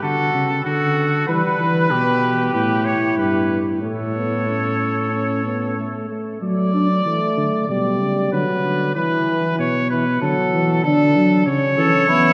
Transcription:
0.03 D3 F#4 A4
0.34 C#3
0.65 D3 F#4 A4
1.28 E3 G3 B4
1.60 E3
1.91 B2 B3 G4
2.54 A2 E4 B4
2.85 C#5
3.17 G2 B4
3.82 A2 A3 A4 C#5
4.15 B3
4.48 C#4
5.12 C#4
5.45 B3
5.77 A3
6.09 A3
6.42 F#3 A3 D5
6.74 D4
7.05 E3 A3
7.37 D3
7.69 B2 G3 D5
8.01 C#3
8.32 D3 F#3 B4
8.64 D3
8.95 E3 B4
9.59 B2 C#5
9.90 E3 B4
10.21 D3 F#3 A4
10.53 E3
10.84 D3 D4 A4
11.16 F#3
11.47 C#3 C#4 C#5
11.78 E3 A4
12.09 E3 B3 E4

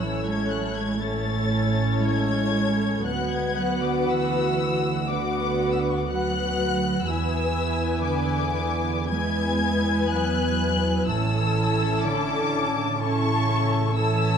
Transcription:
Already playing: A1
0.00 E3 C#4 E4 A4 C#5 E6
0.26 G#3 G#6
0.50 F#3 F#6
0.75 G#3 G#6
1.00 A3 C#4 E4 A4 C#5 A6
2.01 G#3 G#6
3.04 D2 F#3 B3 F#4 B4 F#5 F#6
3.30 G#3 G#6
3.56 F#3 F#6
3.82 D3 D6
4.07 E3 E6
5.08 D3 B3 F#4 B4 F#5 D6
5.72 E6
5.81 D6
5.90 C#6
5.98 D6
6.07 F#3 B3 F#4 B4 F#5 F#6
7.05 E2 E3 B3 E4 B4 G#5 E6
8.02 D3 D6
9.09 G#3 B3 E4 B4 G#5 G#6
10.11 F#3 F#6
11.07 A1 E3 C#4 E4 A4 A5 E6
12.02 D3 D6
12.99 C#3 C#4 E4 A4 A5 C#6
13.95 E3 C#4 E4 A4 A5 E6

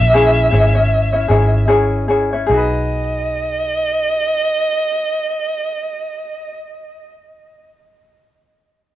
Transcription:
Already playing: C#4 E4 C#5 E5
0.00 A#1
0.14 C#4 E4 G#4 C#5
0.51 G#1 C#4 E4 G#4 C#5
0.75 C#4 E4 C#5
1.13 C#4 E4 C#5
1.28 G#1 C#4 E4 G#4 C#5
1.68 C#4 E4 G#4 C#5
2.08 C#4 E4 G#4 C#5
2.33 C#4 E4 C#5
2.46 B1 G#4 D#5
2.50 D#4 F#4
2.57 B4

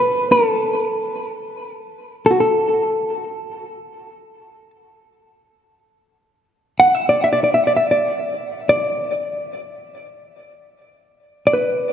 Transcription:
Already playing: B4
0.32 A4
2.26 A4
2.31 F#4
2.40 A4
6.80 F#5
6.95 E5
7.09 D5
7.24 E5
7.33 D5
7.44 D5
7.54 E5
7.67 D5
7.77 E5
7.91 D5
8.69 D5
11.47 D5
11.53 B4

